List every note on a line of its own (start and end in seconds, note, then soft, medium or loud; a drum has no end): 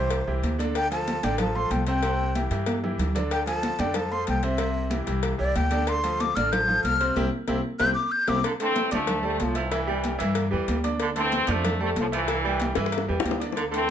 0.00 0.25 C2 medium
0.00 0.20 E3 medium
0.00 0.21 E4 medium
0.00 0.21 G4 medium
0.00 0.57 C5 medium
0.10 cowbell loud
0.10 high conga soft
0.27 0.42 C2 medium
0.27 0.54 E3 medium
0.27 0.54 E4 medium
0.27 0.54 G4 medium
0.27 high conga soft
0.43 1.17 D2 medium
0.43 cowbell medium
0.43 high conga medium
0.58 0.85 D3 medium
0.58 0.85 D4 medium
0.58 0.85 D5 medium
0.58 cowbell medium
0.58 high conga medium
0.75 0.91 G5 loud
0.75 cowbell loud
0.91 1.17 F3 medium
0.91 1.18 F4 medium
0.91 1.18 A4 medium
0.91 1.25 A5 loud
0.91 cowbell medium
0.91 high conga soft
1.08 cowbell medium
1.08 high conga medium
1.23 1.68 A1 medium
1.23 1.37 D3 medium
1.23 1.36 D4 medium
1.23 1.37 D5 medium
1.23 1.39 G5 medium
1.23 cowbell medium
1.23 high conga loud
1.38 1.53 F3 medium
1.38 1.52 F4 medium
1.38 1.53 A4 medium
1.38 1.57 A5 medium
1.38 cowbell loud
1.38 high conga soft
1.38 low conga medium
1.56 1.82 F3 medium
1.56 1.82 F4 medium
1.56 1.82 A4 medium
1.56 1.73 C6 loud
1.56 high conga soft
1.71 2.45 C2 loud
1.71 1.87 G5 medium
1.71 cowbell medium
1.71 high conga medium
1.87 2.01 C3 medium
1.87 2.01 C4 medium
1.87 2.01 C5 medium
1.87 2.50 G5 loud
1.87 cowbell medium
2.03 2.30 C3 medium
2.03 2.30 C4 medium
2.03 2.30 C5 medium
2.03 cowbell loud
2.03 high conga soft
2.20 high conga soft
2.35 2.48 E3 medium
2.35 2.49 E4 medium
2.35 2.49 G4 medium
2.35 cowbell medium
2.35 high conga medium
2.51 2.96 G2 loud
2.51 2.78 E3 medium
2.51 2.78 E4 medium
2.51 2.78 G4 medium
2.51 cowbell medium
2.66 cowbell loud
2.66 high conga medium
2.83 3.10 E3 medium
2.83 3.10 E4 medium
2.83 3.10 G4 medium
2.83 low conga medium
2.98 3.73 D2 medium
2.98 cowbell medium
2.98 low conga loud
3.15 3.41 D3 medium
3.15 3.41 D4 medium
3.15 3.41 D5 medium
3.15 cowbell medium
3.15 low conga medium
3.31 3.46 G5 loud
3.31 cowbell loud
3.31 high conga soft
3.46 3.73 F3 medium
3.46 3.73 F4 medium
3.46 3.74 A4 medium
3.46 3.82 A5 loud
3.46 cowbell medium
3.46 high conga soft
3.63 cowbell medium
3.63 high conga loud
3.79 4.24 F2 loud
3.79 3.92 D3 medium
3.79 3.92 D4 medium
3.79 3.92 D5 medium
3.79 3.97 G5 medium
3.79 cowbell medium
3.79 high conga medium
3.94 4.09 F3 medium
3.94 4.09 F4 medium
3.94 4.09 A4 medium
3.94 4.13 A5 loud
3.94 cowbell loud
3.94 high conga soft
3.94 low conga medium
4.11 4.38 F3 medium
4.11 4.38 F4 medium
4.11 4.38 A4 medium
4.11 4.27 C6 medium
4.11 high conga soft
4.27 5.02 C2 loud
4.27 4.45 G5 medium
4.27 cowbell medium
4.27 high conga medium
4.43 4.56 C3 medium
4.43 4.57 C4 medium
4.43 4.57 C5 medium
4.43 5.06 E5 loud
4.43 cowbell medium
4.58 4.86 C3 medium
4.58 4.86 C4 medium
4.58 4.86 C5 medium
4.58 cowbell loud
4.58 high conga soft
4.75 high conga soft
4.90 5.04 E3 medium
4.90 5.05 E4 medium
4.90 5.04 G4 medium
4.90 cowbell medium
4.90 high conga loud
5.06 5.38 C2 medium
5.06 5.33 E3 medium
5.06 5.34 E4 medium
5.06 5.34 G4 medium
5.06 cowbell medium
5.06 high conga soft
5.23 cowbell loud
5.23 high conga soft
5.38 5.55 C2 medium
5.38 5.65 E3 medium
5.38 5.66 E4 medium
5.38 5.65 G4 medium
5.38 5.57 D5 loud
5.38 high conga soft
5.56 6.30 D2 loud
5.56 5.90 G5 loud
5.56 cowbell medium
5.56 high conga medium
5.71 5.97 D3 medium
5.71 5.98 D4 medium
5.71 5.98 D5 medium
5.71 cowbell medium
5.71 high conga medium
5.87 6.22 C6 loud
5.87 cowbell loud
5.87 high conga soft
6.04 6.30 F3 medium
6.04 6.30 F4 medium
6.04 6.30 A4 medium
6.04 cowbell medium
6.04 high conga soft
6.20 6.37 D6 loud
6.20 cowbell medium
6.20 high conga loud
6.35 6.81 A1 loud
6.35 6.49 D3 medium
6.35 6.49 D4 medium
6.35 6.49 D5 medium
6.35 6.54 F6 loud
6.35 cowbell medium
6.35 high conga loud
6.52 6.65 F3 medium
6.52 6.66 F4 medium
6.52 6.66 A4 medium
6.52 6.83 G6 medium
6.52 cowbell loud
6.52 high conga soft
6.52 low conga medium
6.68 6.94 F3 medium
6.68 6.94 F4 medium
6.68 6.95 A4 medium
6.68 high conga soft
6.68 low conga medium
6.84 7.14 C2 medium
6.84 7.15 F6 loud
6.84 cowbell medium
6.84 high conga medium
7.00 7.13 C3 medium
7.00 7.14 C4 medium
7.00 7.13 C5 medium
7.00 cowbell medium
7.16 7.28 C2 loud
7.16 7.27 C4 loud
7.16 7.27 E4 loud
7.16 7.27 G4 loud
7.16 cowbell medium
7.16 high conga loud
7.48 7.60 C2 loud
7.48 7.59 C4 medium
7.48 7.58 E4 loud
7.48 7.59 G4 medium
7.48 cowbell loud
7.48 high conga loud
7.79 7.92 C2 medium
7.79 7.90 C4 loud
7.79 7.90 E4 loud
7.79 7.90 G4 loud
7.79 7.94 G6 loud
7.79 cowbell loud
7.79 high conga loud
7.94 8.13 D6 medium
8.12 8.30 G6 loud
8.27 8.40 C2 loud
8.27 8.38 C4 loud
8.27 8.38 E4 medium
8.27 8.38 G4 medium
8.27 8.44 D6 loud
8.27 cowbell loud
8.27 high conga loud
8.44 8.53 D3 medium
8.44 cowbell loud
8.60 8.78 D3 medium
8.60 8.91 E3 medium
8.60 8.86 A3 medium
8.60 8.90 C4 loud
8.60 8.86 A4 medium
8.60 8.87 A5 medium
8.60 cowbell medium
8.60 high conga soft
8.76 cowbell medium
8.76 high conga loud
8.91 9.37 D2 loud
8.91 9.22 C3 medium
8.91 9.10 F3 medium
8.91 9.22 A3 loud
8.91 9.18 D4 medium
8.91 9.18 D5 medium
8.91 9.18 D6 medium
8.91 cowbell medium
8.91 high conga loud
9.07 cowbell loud
9.07 high conga soft
9.07 low conga medium
9.23 9.40 C3 medium
9.23 9.41 G3 medium
9.23 9.50 A3 medium
9.23 9.40 A3 loud
9.23 9.50 A4 medium
9.23 9.50 A5 medium
9.23 high conga soft
9.40 10.15 C2 medium
9.40 9.57 A2 medium
9.40 9.57 F3 medium
9.40 cowbell medium
9.40 high conga medium
9.55 10.49 G2 medium
9.55 10.49 E3 medium
9.55 9.73 F3 medium
9.55 9.69 E4 medium
9.55 9.69 E5 medium
9.55 9.69 E6 medium
9.55 cowbell medium
9.55 high conga soft
9.71 9.85 E3 medium
9.71 9.85 E4 medium
9.71 9.85 E5 medium
9.71 cowbell loud
9.71 high conga soft
9.87 10.14 G3 medium
9.87 10.05 G3 medium
9.87 10.14 G4 medium
9.87 10.14 G5 medium
9.87 high conga soft
10.04 cowbell medium
10.04 high conga medium
10.19 10.50 G2 loud
10.19 10.46 E3 loud
10.19 10.36 E3 medium
10.19 10.46 E4 medium
10.19 10.46 E5 medium
10.19 cowbell medium
10.19 high conga soft
10.35 cowbell loud
10.35 high conga soft
10.51 10.67 E2 medium
10.51 10.77 E3 medium
10.51 10.78 G3 medium
10.51 10.78 G4 medium
10.51 10.78 G5 medium
10.51 high conga soft
10.68 11.43 D2 medium
10.68 cowbell medium
10.68 high conga medium
10.84 11.10 D4 medium
10.84 11.10 D5 medium
10.84 11.11 D6 medium
10.84 cowbell medium
10.84 high conga medium
11.00 11.10 D3 loud
11.00 cowbell loud
11.16 11.34 D3 medium
11.16 11.47 E3 medium
11.16 11.42 A3 medium
11.16 11.47 C4 loud
11.16 11.43 A4 medium
11.16 11.43 A5 medium
11.16 cowbell medium
11.16 high conga soft
11.32 cowbell medium
11.32 high conga loud
11.46 11.93 F2 loud
11.46 11.65 F3 medium
11.46 11.73 D4 medium
11.46 11.74 D5 medium
11.46 11.74 D6 medium
11.46 cowbell medium
11.46 high conga loud
11.50 11.81 C3 medium
11.50 11.81 A3 loud
11.65 cowbell loud
11.65 high conga soft
11.65 low conga medium
11.80 11.89 C3 medium
11.80 11.97 G3 medium
11.80 12.07 A3 medium
11.80 11.89 A3 loud
11.80 12.07 A4 medium
11.80 12.07 A5 medium
11.80 high conga soft
11.96 12.71 C2 medium
11.96 12.05 A2 medium
11.96 12.05 F3 medium
11.96 cowbell medium
11.96 high conga medium
12.12 13.05 G2 medium
12.12 13.06 E3 loud
12.12 12.29 F3 medium
12.12 12.25 E4 medium
12.12 12.26 E5 medium
12.12 12.26 E6 medium
12.12 cowbell medium
12.27 12.41 E3 medium
12.27 12.42 E4 medium
12.27 12.42 E5 medium
12.27 cowbell loud
12.27 high conga soft
12.44 12.61 G3 medium
12.44 12.71 G3 medium
12.44 12.71 G4 medium
12.44 12.71 G5 medium
12.44 high conga soft
12.60 cowbell medium
12.60 high conga loud
12.75 13.06 G2 medium
12.75 12.93 E3 medium
12.75 13.03 E3 medium
12.75 13.03 E4 loud
12.75 13.03 E5 loud
12.75 cowbell medium
12.75 high bongo loud
12.75 high conga soft
12.86 high bongo medium
12.92 cowbell loud
12.92 high conga soft
12.98 high bongo medium
13.08 13.24 E2 medium
13.08 13.34 E3 medium
13.08 13.35 G3 medium
13.08 13.35 G4 medium
13.08 13.35 G5 medium
13.08 high conga soft
13.20 low bongo loud
13.24 13.90 D2 medium
13.24 cowbell medium
13.24 high conga medium
13.31 low bongo loud
13.40 13.66 D4 medium
13.40 13.67 D5 medium
13.40 13.67 D6 medium
13.40 cowbell medium
13.52 13.65 D3 loud
13.52 low bongo medium
13.57 cowbell loud
13.57 high conga soft
13.71 13.88 D3 medium
13.71 13.90 E3 medium
13.71 13.90 A3 medium
13.71 13.90 C4 loud
13.71 13.90 A4 medium
13.71 13.90 A5 medium
13.71 cowbell medium
13.71 high conga soft